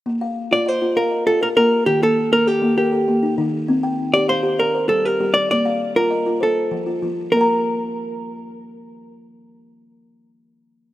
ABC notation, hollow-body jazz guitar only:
X:1
M:12/8
L:1/8
Q:3/8=132
K:Bb
V:1 name="Hollow-body jazz guitar"
z3 d c2 B2 A B B2 | G A2 B G2 G4 z2 | z3 d c2 B2 A B2 d | d3 B3 A4 z2 |
B12- | B12 |]